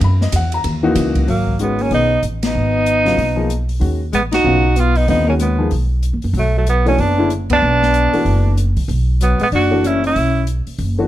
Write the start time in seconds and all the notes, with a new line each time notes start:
0.00 F#2 B5, ride
0.21 D#5, snare
0.32 E2 F#5, hi-hat pedal, ride
0.52 A#5, ride
0.64 D#2, ride
0.83 E3 A#3 D#4 F#4
0.95 C#2, hi-hat pedal, ride
1.15 kick, ride
1.27 G#1 F#3 A#3, open hi-hat
1.47 kick
1.59 D#3 G#3 B3 C#4 F#4, closed hi-hat
1.79 A#3 C#4, open hi-hat
1.90 B1 D#3 G#3 B3 C#4 D#4, open hi-hat
2.23 A1, closed hi-hat
2.43 B3 D#4, snare, ride
2.55 G#1
2.86 closed hi-hat
3.05 C#3 F#3 B3 F4, snare, open hi-hat
3.17 B1, open hi-hat
3.36 F3 A#3 D#4 G#4
3.50 closed hi-hat
3.69 open hi-hat
3.80 D#2 D#3 G#3 C#4 F#4, open hi-hat
4.13 A1 G#3 B3, closed hi-hat
4.32 D#4 F#4, snare, ride
4.44 B1 C#3 F#3 B3 F4
4.76 B3 F4, closed hi-hat
4.95 B3 D#4, open hi-hat
5.08 D#2 D3 G3 B3 C4 D#4 F4, open hi-hat
5.27 D#3 G#3 A#3 C#4 F#4
5.39 G#3 B3, closed hi-hat
5.58 F3 A#3 D#4 G#4
5.71 B1, open hi-hat
6.03 closed hi-hat
6.13 D#2
6.22 F#2, open hi-hat
6.33 B1 F#3, open hi-hat
6.39 A3
6.57 F#3 A3
6.67 F#3 B3, closed hi-hat
6.85 E3 A3 C#4 D4 F#4, open hi-hat
6.98 F#1 B3 D4, open hi-hat
7.18 D3 G#3 C#4 E4
7.30 closed hi-hat
7.50 F#2 B3 D4, kick, ride
7.62 B1
7.82 snare
7.94 closed hi-hat
8.13 E3 A3 D4 F#4, muted upright bass stroke, open hi-hat
8.25 F#1, open hi-hat
8.57 closed hi-hat
8.77 C2, kick, open hi-hat
8.88 B1, open hi-hat
9.21 F#3 B3, closed hi-hat
9.39 A1 G#3 B3, open hi-hat
9.52 F#1 D4 F#4, open hi-hat
9.71 E3 A3 D4 F#4
9.84 C#4 E4, closed hi-hat
10.04 C#4 E4, open hi-hat
10.15 B1, open hi-hat
10.47 closed hi-hat
10.67 muted upright bass stroke, open hi-hat
10.78 F#1, open hi-hat
10.99 E3 A3 D4 F#4